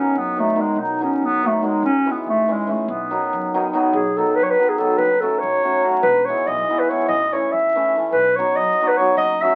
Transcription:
Already playing: hammered dulcimer D#3 F#3 B3 D#4, clarinet C#4
0.16 upright bass F#2, clarinet B3
0.36 hammered dulcimer D#3 F#3 B3 D#4, clarinet A3
0.55 hammered dulcimer D#3 F#3 B3 D#4
0.60 clarinet G#3
0.76 upright bass B1, clarinet D#4
1.00 hammered dulcimer D#3 F#3 B3 D#4, clarinet C#4
1.22 upright bass F#2, clarinet B3
1.43 hammered dulcimer D#3 F#3 B3 D#4, clarinet A3
1.62 hammered dulcimer D#3 F#3 B3 D#4, clarinet G#3
1.83 upright bass C#2, clarinet C#4
2.06 hammered dulcimer E3 G#3 C#4 E4
2.11 clarinet B3
2.26 upright bass G#1, clarinet A3
2.48 hammered dulcimer E3 G#3 C#4 E4, clarinet G#3
2.67 hammered dulcimer E3 G#3 C#4 E4, clarinet A3
2.88 upright bass B1, clarinet B3
3.10 hammered dulcimer D#3 F#3 B3 D#4
3.33 upright bass F#2
3.54 hammered dulcimer D#3 F#3 B3 D#4
3.73 hammered dulcimer D#3 F#3 B3 D#4
3.93 upright bass B1, clarinet G#4
4.17 hammered dulcimer D#3 F#3 B3 D#4, clarinet A4
4.35 upright bass F#2, clarinet B4
4.43 clarinet C#5
4.50 clarinet B4
4.58 hammered dulcimer D#3 F#3 B3 D#4
4.69 clarinet G#4
4.78 hammered dulcimer D#3 F#3 B3 D#4, clarinet A4
4.98 upright bass F#1, clarinet B4
5.20 hammered dulcimer F#3 A3 C#4 F#4, clarinet A4
5.39 upright bass C#2, clarinet C#5
5.63 hammered dulcimer F#3 A3 C#4 F#4
5.82 hammered dulcimer F#3 A3 C#4 F#4
6.03 upright bass E1, clarinet B4
6.25 hammered dulcimer E3 G#3, clarinet C#5
6.29 hammered dulcimer B3 E4
6.47 upright bass B1, clarinet D#5
6.69 hammered dulcimer E3 G#3 B3 E4
6.79 clarinet B4
6.89 hammered dulcimer E3 G#3 B3 E4, clarinet C#5
7.08 upright bass A1, clarinet D#5
7.32 hammered dulcimer E3 A3 C#4 E4, clarinet C#5
7.52 upright bass E2, clarinet E5
7.75 hammered dulcimer E3 A3 C#4 E4
7.95 hammered dulcimer E3 A3 C#4 E4
8.12 upright bass B1, clarinet B4
8.36 hammered dulcimer F#3 B3 D#4 F#4, clarinet C#5
8.56 upright bass F#2, clarinet D#5
8.81 hammered dulcimer F#3 B3 D#4 F#4
8.87 clarinet B4
8.97 hammered dulcimer F#3 B3 D#4, clarinet C#5
9.02 hammered dulcimer F#4
9.17 upright bass F#1, clarinet D#5
9.42 hammered dulcimer F#3 A3 C#4 F#4, clarinet E5

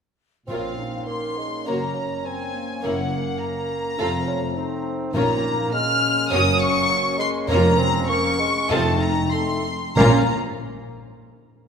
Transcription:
0.47 double bass section A#1, timpani A#2, cello section A#2, viola section A#3 F4, french horn section A#3 C#4, bassoon C4, clarinet F4, violin section A#4 C#5 F5, flute section F5
0.79 clarinet D#4
1.07 bassoon A#3, flute section C6, violin section C6
1.37 bassoon G#3
1.66 double bass section F#1, cello section F#2, bassoon A#3, viola section A#3 F#4, clarinet C#4, violin section A#4 C#5 A#5, flute section A#5
1.94 bassoon C#4
2.24 bassoon C4, clarinet C4, flute section G#5, violin section G#5
2.54 clarinet A#3
2.82 double bass section F#1, cello section F#2, bassoon A#3, viola section A#3 E4, clarinet C#4, violin section A#4 C#5 F#5, flute section F#5
3.12 bassoon A#3
3.41 flute section A#5, violin section A#5
3.98 double bass section F1, cello section F2, bassoon A3, french horn section A3 C4, viola section C4 F4, clarinet F4, violin section A4 F5
4.27 bassoon C#4
4.57 bassoon C4, clarinet D#4
5.12 double bass section A#1, timpani A#2, cello section A#2, french horn section A#3 C#4, bassoon A#3, viola section C#4 F4, violin section A#4 C#5 A#5, flute section A#5
5.72 bassoon G#3, clarinet C#4, flute section F6, violin section F6
6.30 double bass section F#1, cello section F#2, bassoon F#3, viola section C#4 F#4, violin section A#4 C#5 D#6, flute section D#6
6.61 flute section C#6, violin section C#6
6.89 bassoon F#3
7.18 bassoon G#3, violin section C6, flute section C6
7.48 double bass section F1, timpani F2, cello section F2, bassoon A#3, viola section C#4 F4, clarinet C#4, violin section A#4 C#5 A#5, flute section A#5
7.79 bassoon C4
8.09 bassoon A#3, flute section C#6, violin section C#6
8.39 bassoon G#3
8.70 double bass section F1, timpani F2, cello section F2, french horn section A3 D#4, bassoon A3, viola section C4 F4, clarinet C4, violin section A4 D#5 A5, flute section A5
9.01 violin section A#5, flute section A#5
9.31 bassoon A3, clarinet C4, flute section C6, violin section C6
9.95 double bass section A#1, timpani A#2, cello section A#2, french horn section A#3 C#4, bassoon A#3, clarinet C#4, viola section C#4 F4, violin section A#4 F5 A#5, flute section A#5

